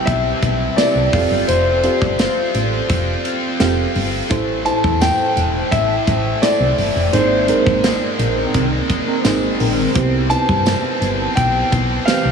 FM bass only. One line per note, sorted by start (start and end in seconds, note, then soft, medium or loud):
0.07 0.34 B1 loud
0.43 0.69 B1 loud
0.95 1.09 C2 medium
1.13 1.26 F1 loud
1.31 1.44 G1 medium
1.48 1.88 F1 loud
2.02 2.28 G1 medium
2.55 2.81 A1 medium
2.90 3.16 F1 medium
3.60 3.87 F1 medium
3.95 4.22 G1 loud
4.31 4.71 A1 loud
4.84 5.10 E2 medium
5.36 5.63 E1 medium
5.72 5.99 A1 loud
6.08 6.34 A1 loud
6.60 6.73 C2 loud
6.78 6.91 G1 medium
6.96 7.09 F1 medium
7.13 7.53 G#1 loud
7.67 7.93 G#1 medium
8.19 8.45 A#1 medium
8.55 8.81 C2 loud
9.25 9.51 G#1 medium
9.60 9.87 A#1 medium
9.95 10.35 C2 loud
10.49 10.75 G2 medium
11.01 11.28 G1 loud
11.37 11.63 B1 loud
11.72 11.99 B1 loud
12.25 12.32 C2 medium